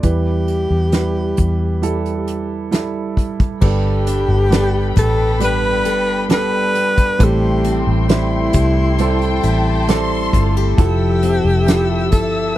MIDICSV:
0, 0, Header, 1, 8, 480
1, 0, Start_track
1, 0, Tempo, 895522
1, 20, Time_signature, 4, 2, 24, 8
1, 6742, End_track
2, 0, Start_track
2, 0, Title_t, "Violin section"
2, 0, Program_c, 0, 48
2, 4817, Note_on_c, 0, 79, 75
2, 5277, Note_off_c, 0, 79, 0
2, 5292, Note_on_c, 0, 84, 97
2, 5656, Note_off_c, 0, 84, 0
2, 6742, End_track
3, 0, Start_track
3, 0, Title_t, "String section"
3, 0, Program_c, 1, 48
3, 1936, Note_on_c, 1, 79, 72
3, 1939, Note_on_c, 1, 69, 72
3, 1940, Note_on_c, 1, 83, 92
3, 3839, Note_off_c, 1, 79, 0
3, 3840, Note_off_c, 1, 69, 0
3, 3840, Note_off_c, 1, 83, 0
3, 3859, Note_on_c, 1, 69, 69
3, 3861, Note_on_c, 1, 79, 72
3, 3862, Note_on_c, 1, 84, 91
3, 4811, Note_off_c, 1, 79, 0
3, 4822, Note_on_c, 1, 81, 69
3, 5761, Note_off_c, 1, 84, 0
3, 5771, Note_off_c, 1, 81, 0
3, 5778, Note_on_c, 1, 76, 76
3, 5779, Note_on_c, 1, 88, 80
3, 6742, Note_off_c, 1, 69, 0
3, 6742, Note_off_c, 1, 76, 0
3, 6742, Note_off_c, 1, 88, 0
3, 6742, End_track
4, 0, Start_track
4, 0, Title_t, "Alto saxophone"
4, 0, Program_c, 2, 65
4, 27, Note_on_c, 2, 67, 82
4, 1442, Note_off_c, 2, 67, 0
4, 1952, Note_on_c, 2, 67, 99
4, 2645, Note_off_c, 2, 67, 0
4, 2673, Note_on_c, 2, 69, 97
4, 2890, Note_off_c, 2, 69, 0
4, 2917, Note_on_c, 2, 71, 95
4, 3367, Note_off_c, 2, 71, 0
4, 3396, Note_on_c, 2, 71, 102
4, 3880, Note_on_c, 2, 67, 95
4, 3888, Note_off_c, 2, 71, 0
4, 4205, Note_off_c, 2, 67, 0
4, 4355, Note_on_c, 2, 64, 87
4, 5286, Note_off_c, 2, 64, 0
4, 5781, Note_on_c, 2, 67, 105
4, 6479, Note_off_c, 2, 67, 0
4, 6495, Note_on_c, 2, 69, 86
4, 6720, Note_off_c, 2, 69, 0
4, 6742, End_track
5, 0, Start_track
5, 0, Title_t, "Steel-string acoustic guitar"
5, 0, Program_c, 3, 25
5, 1938, Note_on_c, 3, 55, 73
5, 1942, Note_on_c, 3, 69, 55
5, 2184, Note_on_c, 3, 62, 55
5, 2422, Note_off_c, 3, 69, 0
5, 2424, Note_on_c, 3, 69, 60
5, 2657, Note_on_c, 3, 59, 56
5, 2890, Note_off_c, 3, 62, 0
5, 2897, Note_on_c, 3, 62, 69
5, 3137, Note_off_c, 3, 69, 0
5, 3139, Note_on_c, 3, 69, 66
5, 3371, Note_off_c, 3, 62, 0
5, 3377, Note_on_c, 3, 62, 62
5, 3613, Note_off_c, 3, 59, 0
5, 3619, Note_on_c, 3, 59, 54
5, 3859, Note_off_c, 3, 55, 0
5, 3859, Note_on_c, 3, 45, 74
5, 3860, Note_off_c, 3, 69, 0
5, 3862, Note_on_c, 3, 64, 63
5, 3907, Note_off_c, 3, 62, 0
5, 3908, Note_off_c, 3, 59, 0
5, 4098, Note_on_c, 3, 60, 64
5, 4334, Note_off_c, 3, 64, 0
5, 4336, Note_on_c, 3, 64, 57
5, 4576, Note_on_c, 3, 67, 63
5, 4816, Note_on_c, 3, 55, 67
5, 5054, Note_off_c, 3, 64, 0
5, 5056, Note_on_c, 3, 64, 63
5, 5303, Note_off_c, 3, 60, 0
5, 5305, Note_on_c, 3, 60, 65
5, 5538, Note_off_c, 3, 67, 0
5, 5544, Note_on_c, 3, 65, 55
5, 5664, Note_off_c, 3, 65, 0
5, 5664, Note_on_c, 3, 67, 47
5, 5778, Note_off_c, 3, 45, 0
5, 5780, Note_on_c, 3, 53, 85
5, 5784, Note_off_c, 3, 64, 0
5, 5786, Note_on_c, 3, 69, 65
5, 5826, Note_off_c, 3, 55, 0
5, 5830, Note_off_c, 3, 67, 0
5, 6016, Note_off_c, 3, 60, 0
5, 6019, Note_on_c, 3, 60, 58
5, 6260, Note_off_c, 3, 69, 0
5, 6262, Note_on_c, 3, 69, 67
5, 6502, Note_on_c, 3, 64, 59
5, 6742, Note_off_c, 3, 53, 0
5, 6742, Note_off_c, 3, 60, 0
5, 6742, Note_off_c, 3, 64, 0
5, 6742, Note_off_c, 3, 69, 0
5, 6742, End_track
6, 0, Start_track
6, 0, Title_t, "Grand piano"
6, 0, Program_c, 4, 0
6, 0, Control_c, 4, 64, 127
6, 15, Note_on_c, 4, 55, 60
6, 19, Note_on_c, 4, 52, 52
6, 19, Note_on_c, 4, 64, 58
6, 24, Note_on_c, 4, 71, 62
6, 27, Control_c, 4, 64, 0
6, 124, Control_c, 4, 64, 127
6, 473, Note_off_c, 4, 55, 0
6, 475, Note_off_c, 4, 64, 0
6, 478, Note_off_c, 4, 71, 0
6, 496, Note_on_c, 4, 55, 59
6, 502, Note_on_c, 4, 64, 51
6, 503, Note_on_c, 4, 71, 62
6, 718, Note_off_c, 4, 52, 0
6, 954, Note_off_c, 4, 55, 0
6, 957, Note_off_c, 4, 64, 0
6, 957, Note_off_c, 4, 71, 0
6, 975, Note_on_c, 4, 55, 61
6, 977, Note_on_c, 4, 64, 63
6, 982, Note_on_c, 4, 69, 79
6, 1433, Note_off_c, 4, 55, 0
6, 1435, Note_off_c, 4, 64, 0
6, 1437, Note_off_c, 4, 69, 0
6, 1454, Note_on_c, 4, 55, 64
6, 1457, Note_on_c, 4, 64, 65
6, 1462, Note_on_c, 4, 69, 69
6, 1913, Note_off_c, 4, 55, 0
6, 1915, Note_off_c, 4, 64, 0
6, 1917, Note_off_c, 4, 69, 0
6, 1935, Note_on_c, 4, 55, 68
6, 1936, Note_on_c, 4, 59, 63
6, 1937, Note_on_c, 4, 43, 64
6, 1942, Note_on_c, 4, 69, 76
6, 1948, Control_c, 4, 64, 0
6, 2047, Control_c, 4, 64, 127
6, 2393, Note_off_c, 4, 55, 0
6, 2394, Note_off_c, 4, 59, 0
6, 2397, Note_off_c, 4, 69, 0
6, 2414, Note_on_c, 4, 55, 64
6, 2420, Note_on_c, 4, 59, 66
6, 2423, Note_on_c, 4, 71, 75
6, 2637, Note_off_c, 4, 43, 0
6, 2873, Note_off_c, 4, 55, 0
6, 2876, Note_off_c, 4, 59, 0
6, 2877, Note_off_c, 4, 71, 0
6, 2893, Note_on_c, 4, 55, 63
6, 2897, Note_on_c, 4, 59, 57
6, 2900, Note_on_c, 4, 71, 79
6, 3352, Note_off_c, 4, 55, 0
6, 3355, Note_off_c, 4, 59, 0
6, 3356, Note_off_c, 4, 71, 0
6, 3373, Note_on_c, 4, 55, 69
6, 3377, Note_on_c, 4, 59, 61
6, 3380, Note_on_c, 4, 69, 80
6, 3833, Note_off_c, 4, 55, 0
6, 3834, Note_off_c, 4, 59, 0
6, 3836, Note_off_c, 4, 69, 0
6, 3852, Note_on_c, 4, 55, 77
6, 3856, Note_on_c, 4, 45, 68
6, 3858, Note_on_c, 4, 60, 69
6, 3861, Note_on_c, 4, 69, 79
6, 3866, Control_c, 4, 64, 0
6, 3955, Control_c, 4, 64, 127
6, 4312, Note_off_c, 4, 55, 0
6, 4315, Note_off_c, 4, 60, 0
6, 4316, Note_off_c, 4, 69, 0
6, 4335, Note_on_c, 4, 55, 69
6, 4341, Note_on_c, 4, 60, 64
6, 4344, Note_on_c, 4, 64, 74
6, 4556, Note_off_c, 4, 45, 0
6, 4794, Note_off_c, 4, 55, 0
6, 4796, Note_off_c, 4, 60, 0
6, 4798, Note_off_c, 4, 64, 0
6, 4821, Note_on_c, 4, 55, 66
6, 4825, Note_on_c, 4, 60, 61
6, 4829, Note_on_c, 4, 69, 76
6, 5277, Note_off_c, 4, 55, 0
6, 5278, Note_off_c, 4, 60, 0
6, 5280, Note_off_c, 4, 69, 0
6, 5298, Note_on_c, 4, 55, 85
6, 5302, Note_on_c, 4, 60, 78
6, 5307, Note_on_c, 4, 69, 95
6, 5755, Note_off_c, 4, 55, 0
6, 5757, Note_off_c, 4, 60, 0
6, 5759, Note_off_c, 4, 69, 0
6, 5775, Note_on_c, 4, 53, 73
6, 5778, Note_on_c, 4, 64, 66
6, 5782, Note_on_c, 4, 69, 80
6, 5788, Control_c, 4, 64, 0
6, 5871, Control_c, 4, 64, 127
6, 6234, Note_off_c, 4, 53, 0
6, 6235, Note_off_c, 4, 64, 0
6, 6237, Note_off_c, 4, 69, 0
6, 6251, Note_on_c, 4, 53, 63
6, 6256, Note_on_c, 4, 64, 56
6, 6262, Note_on_c, 4, 67, 81
6, 6712, Note_off_c, 4, 53, 0
6, 6714, Note_off_c, 4, 64, 0
6, 6717, Note_off_c, 4, 67, 0
6, 6742, End_track
7, 0, Start_track
7, 0, Title_t, "Fingered electric bass"
7, 0, Program_c, 5, 33
7, 16, Note_on_c, 5, 40, 78
7, 357, Note_off_c, 5, 40, 0
7, 378, Note_on_c, 5, 40, 68
7, 717, Note_off_c, 5, 40, 0
7, 739, Note_on_c, 5, 40, 85
7, 1918, Note_off_c, 5, 40, 0
7, 1940, Note_on_c, 5, 31, 93
7, 2279, Note_off_c, 5, 31, 0
7, 2297, Note_on_c, 5, 31, 83
7, 2637, Note_off_c, 5, 31, 0
7, 2660, Note_on_c, 5, 33, 86
7, 3141, Note_off_c, 5, 33, 0
7, 3141, Note_on_c, 5, 31, 90
7, 3599, Note_off_c, 5, 31, 0
7, 3859, Note_on_c, 5, 33, 96
7, 4198, Note_off_c, 5, 33, 0
7, 4218, Note_on_c, 5, 33, 80
7, 4558, Note_off_c, 5, 33, 0
7, 4578, Note_on_c, 5, 36, 83
7, 5038, Note_off_c, 5, 36, 0
7, 5059, Note_on_c, 5, 33, 84
7, 5518, Note_off_c, 5, 33, 0
7, 5536, Note_on_c, 5, 31, 90
7, 5761, Note_off_c, 5, 31, 0
7, 5776, Note_on_c, 5, 29, 102
7, 6116, Note_off_c, 5, 29, 0
7, 6134, Note_on_c, 5, 29, 72
7, 6497, Note_off_c, 5, 29, 0
7, 6497, Note_on_c, 5, 31, 86
7, 6742, Note_off_c, 5, 31, 0
7, 6742, End_track
8, 0, Start_track
8, 0, Title_t, "Drums"
8, 17, Note_on_c, 9, 42, 75
8, 19, Note_on_c, 9, 36, 85
8, 70, Note_off_c, 9, 42, 0
8, 72, Note_off_c, 9, 36, 0
8, 258, Note_on_c, 9, 42, 53
8, 311, Note_off_c, 9, 42, 0
8, 495, Note_on_c, 9, 42, 70
8, 498, Note_on_c, 9, 38, 99
8, 548, Note_off_c, 9, 42, 0
8, 552, Note_off_c, 9, 38, 0
8, 735, Note_on_c, 9, 42, 63
8, 741, Note_on_c, 9, 36, 66
8, 789, Note_off_c, 9, 42, 0
8, 795, Note_off_c, 9, 36, 0
8, 981, Note_on_c, 9, 42, 72
8, 1034, Note_off_c, 9, 42, 0
8, 1103, Note_on_c, 9, 42, 42
8, 1156, Note_off_c, 9, 42, 0
8, 1219, Note_on_c, 9, 42, 49
8, 1273, Note_off_c, 9, 42, 0
8, 1460, Note_on_c, 9, 42, 57
8, 1466, Note_on_c, 9, 38, 98
8, 1513, Note_off_c, 9, 42, 0
8, 1520, Note_off_c, 9, 38, 0
8, 1700, Note_on_c, 9, 36, 63
8, 1707, Note_on_c, 9, 42, 54
8, 1754, Note_off_c, 9, 36, 0
8, 1760, Note_off_c, 9, 42, 0
8, 1822, Note_on_c, 9, 36, 81
8, 1823, Note_on_c, 9, 42, 41
8, 1876, Note_off_c, 9, 36, 0
8, 1877, Note_off_c, 9, 42, 0
8, 1941, Note_on_c, 9, 36, 106
8, 1941, Note_on_c, 9, 49, 86
8, 1994, Note_off_c, 9, 36, 0
8, 1995, Note_off_c, 9, 49, 0
8, 2181, Note_on_c, 9, 42, 75
8, 2235, Note_off_c, 9, 42, 0
8, 2424, Note_on_c, 9, 42, 80
8, 2428, Note_on_c, 9, 38, 114
8, 2477, Note_off_c, 9, 42, 0
8, 2481, Note_off_c, 9, 38, 0
8, 2663, Note_on_c, 9, 42, 75
8, 2664, Note_on_c, 9, 36, 84
8, 2717, Note_off_c, 9, 36, 0
8, 2717, Note_off_c, 9, 42, 0
8, 2902, Note_on_c, 9, 42, 81
8, 2955, Note_off_c, 9, 42, 0
8, 3136, Note_on_c, 9, 42, 61
8, 3189, Note_off_c, 9, 42, 0
8, 3375, Note_on_c, 9, 42, 72
8, 3381, Note_on_c, 9, 38, 96
8, 3428, Note_off_c, 9, 42, 0
8, 3435, Note_off_c, 9, 38, 0
8, 3619, Note_on_c, 9, 42, 65
8, 3673, Note_off_c, 9, 42, 0
8, 3738, Note_on_c, 9, 42, 54
8, 3740, Note_on_c, 9, 36, 83
8, 3792, Note_off_c, 9, 42, 0
8, 3794, Note_off_c, 9, 36, 0
8, 3860, Note_on_c, 9, 36, 108
8, 3860, Note_on_c, 9, 42, 89
8, 3913, Note_off_c, 9, 42, 0
8, 3914, Note_off_c, 9, 36, 0
8, 4098, Note_on_c, 9, 42, 68
8, 4152, Note_off_c, 9, 42, 0
8, 4338, Note_on_c, 9, 42, 75
8, 4342, Note_on_c, 9, 38, 106
8, 4391, Note_off_c, 9, 42, 0
8, 4395, Note_off_c, 9, 38, 0
8, 4573, Note_on_c, 9, 42, 71
8, 4580, Note_on_c, 9, 36, 90
8, 4626, Note_off_c, 9, 42, 0
8, 4633, Note_off_c, 9, 36, 0
8, 4818, Note_on_c, 9, 42, 76
8, 4872, Note_off_c, 9, 42, 0
8, 4940, Note_on_c, 9, 42, 41
8, 4994, Note_off_c, 9, 42, 0
8, 5058, Note_on_c, 9, 42, 67
8, 5111, Note_off_c, 9, 42, 0
8, 5298, Note_on_c, 9, 42, 75
8, 5305, Note_on_c, 9, 38, 106
8, 5352, Note_off_c, 9, 42, 0
8, 5358, Note_off_c, 9, 38, 0
8, 5538, Note_on_c, 9, 36, 73
8, 5543, Note_on_c, 9, 42, 67
8, 5592, Note_off_c, 9, 36, 0
8, 5596, Note_off_c, 9, 42, 0
8, 5779, Note_on_c, 9, 42, 90
8, 5780, Note_on_c, 9, 36, 112
8, 5833, Note_off_c, 9, 42, 0
8, 5834, Note_off_c, 9, 36, 0
8, 6017, Note_on_c, 9, 42, 66
8, 6071, Note_off_c, 9, 42, 0
8, 6260, Note_on_c, 9, 42, 81
8, 6264, Note_on_c, 9, 38, 115
8, 6314, Note_off_c, 9, 42, 0
8, 6318, Note_off_c, 9, 38, 0
8, 6496, Note_on_c, 9, 42, 76
8, 6500, Note_on_c, 9, 36, 82
8, 6549, Note_off_c, 9, 42, 0
8, 6554, Note_off_c, 9, 36, 0
8, 6742, End_track
0, 0, End_of_file